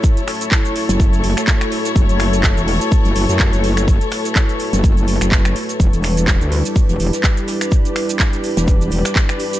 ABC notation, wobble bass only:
X:1
M:4/4
L:1/16
Q:"Swing 16ths" 1/4=125
K:F#phr
V:1 name="Wobble bass" clef=bass
z6 z F,,,3 F,,, z4 z | F,,, F,,,4 E,,,2 z2 F,,, F,,, F,,2 F,,,3- | F,,, z6 F,,,4 F,,,3 z2 | E,,, E,,,4 D,,2 z2 E,,, E,,, z4 z |
z6 z E,,,3 E,,, z4 z |]